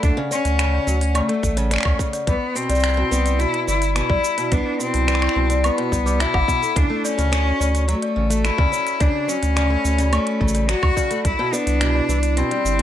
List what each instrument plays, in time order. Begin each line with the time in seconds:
Already playing: steel-string acoustic guitar A3, celesta D5, ambient pad F#5 C#6
0.03 sub bass D2, cello D4, kick, closed hi-hat, shaker
0.17 steel-string acoustic guitar C#3, celesta D5
0.31 steel-string acoustic guitar C#4, cello C#4, celesta D5, shaker
0.45 sub bass D2, closed hi-hat, shaker
0.59 steel-string acoustic guitar C#3, finger snap, closed hi-hat, shaker
0.73 celesta D5
0.87 sub bass D2, steel-string acoustic guitar F#3, shaker
1.01 closed hi-hat, shaker
1.15 steel-string acoustic guitar C#3, cello A3, celesta D5, closed hi-hat, low woodblock, shaker
1.29 steel-string acoustic guitar A3, celesta D5, closed hi-hat
1.43 sub bass A1, kick, shaker
1.57 steel-string acoustic guitar C#3, closed hi-hat, shaker
1.71 steel-string acoustic guitar C#4, celesta D5, finger snap, closed hi-hat, shaker
1.74 finger snap
1.76 finger snap
1.78 finger snap
1.81 finger snap
1.83 sub bass D2, finger snap, kick, low woodblock
1.99 steel-string acoustic guitar C#3, kick, shaker
2.13 celesta D5, closed hi-hat, shaker
2.27 sub bass C2, steel-string acoustic guitar E3, cello B3, ambient pad E4 B5, celesta D5, kick, closed hi-hat, shaker
2.55 steel-string acoustic guitar B2, cello C4, shaker
2.69 sub bass C2, steel-string acoustic guitar G3, celesta D5, closed hi-hat, shaker
2.75 shaker
2.80 shaker
2.84 finger snap, closed hi-hat, shaker
2.89 shaker
2.94 steel-string acoustic guitar B2, shaker
3.11 sub bass C2, steel-string acoustic guitar B3, celesta D5, shaker
3.26 celesta D5, closed hi-hat, shaker
3.39 steel-string acoustic guitar B2, cello E4, closed hi-hat, shaker
3.54 closed hi-hat
3.67 sub bass G1, steel-string acoustic guitar E3, cello E4, celesta D5, shaker
3.82 closed hi-hat, shaker
3.95 steel-string acoustic guitar B2, cello E4, finger snap, closed hi-hat, shaker
4.10 sub bass C2, steel-string acoustic guitar G3, celesta D5, kick
4.24 shaker
4.38 steel-string acoustic guitar B2, closed hi-hat, shaker
4.52 sub bass C2, steel-string acoustic guitar B3, cello D4, ambient pad A5, kick, closed hi-hat, shaker
4.66 celesta D5
4.80 steel-string acoustic guitar B2, cello C4, shaker
4.94 sub bass C2, closed hi-hat, shaker
5.08 steel-string acoustic guitar E3, celesta D5, finger snap, closed hi-hat, shaker
5.15 finger snap
5.22 celesta D5, finger snap, closed hi-hat, low woodblock
5.29 finger snap
5.36 sub bass C2, steel-string acoustic guitar B2
5.50 steel-string acoustic guitar G3, closed hi-hat, shaker
5.64 cello B3, celesta D5, closed hi-hat, low woodblock, shaker
5.78 steel-string acoustic guitar B2, closed hi-hat
5.92 sub bass C2, steel-string acoustic guitar B3, celesta D5, kick, shaker
6.06 steel-string acoustic guitar G3, celesta D6, shaker
6.20 steel-string acoustic guitar B2, cello E4, celesta E5, finger snap, closed hi-hat, shaker
6.34 sub bass G1, celesta D6, kick, low woodblock
6.48 steel-string acoustic guitar B2, celesta F#5, kick, shaker
6.62 celesta A4, shaker
6.76 sub bass D2, steel-string acoustic guitar C#3, cello D4, ambient pad F#4 C#6, kick, closed hi-hat, shaker
6.90 steel-string acoustic guitar A3
7.04 cello C#4, celesta D5, shaker
7.18 sub bass D2, steel-string acoustic guitar C#3, celesta D5, closed hi-hat, shaker
7.32 steel-string acoustic guitar C#4, finger snap, closed hi-hat, shaker
7.60 sub bass D2, steel-string acoustic guitar C#3, celesta D5, shaker
7.75 closed hi-hat, shaker
7.88 steel-string acoustic guitar F#3, cello A3, closed hi-hat, shaker
8.02 celesta D5, closed hi-hat
8.16 sub bass A1, steel-string acoustic guitar C#3, celesta D5
8.30 steel-string acoustic guitar A3, closed hi-hat, shaker
8.45 cello E4, finger snap, closed hi-hat, shaker
8.58 sub bass D2, steel-string acoustic guitar C#3, celesta D5, kick
8.72 steel-string acoustic guitar C#4, shaker
8.87 closed hi-hat, shaker
9.00 sub bass D2, steel-string acoustic guitar C#3, cello D4, celesta D5, ambient pad B5, kick, closed hi-hat, shaker
9.15 celesta D5
9.28 steel-string acoustic guitar F#3, cello C#4, shaker
9.43 sub bass D2, closed hi-hat, shaker
9.56 steel-string acoustic guitar C#3, celesta D5, finger snap, closed hi-hat, shaker
9.70 steel-string acoustic guitar A3
9.85 sub bass D2, shaker
9.98 steel-string acoustic guitar C#3, celesta D5, closed hi-hat, shaker
10.13 cello A3, steel-string acoustic guitar C#4, celesta D5, closed hi-hat, low woodblock, shaker
10.27 closed hi-hat
10.41 sub bass A1, steel-string acoustic guitar C#3, kick
10.48 shaker
10.55 celesta D5, closed hi-hat, shaker
10.69 steel-string acoustic guitar F#3, cello F#4, finger snap, closed hi-hat, shaker
10.83 sub bass D2, kick, low woodblock
10.97 steel-string acoustic guitar C#3, celesta D5, kick, shaker
11.11 steel-string acoustic guitar A3, celesta D5, closed hi-hat, shaker
11.24 sub bass C2, ambient pad E4, cello E4, kick, closed hi-hat, shaker
11.39 steel-string acoustic guitar B2
11.53 steel-string acoustic guitar B3, cello D4, celesta D5, shaker
11.67 sub bass C2, closed hi-hat, shaker
11.81 steel-string acoustic guitar B2, finger snap, closed hi-hat, shaker
11.95 celesta D5
12.09 sub bass C2, steel-string acoustic guitar E3, celesta D5, shaker
12.23 closed hi-hat, shaker
12.37 steel-string acoustic guitar B2, cello C4, closed hi-hat, shaker
12.51 steel-string acoustic guitar G3, celesta D5, closed hi-hat
12.65 sub bass G1, shaker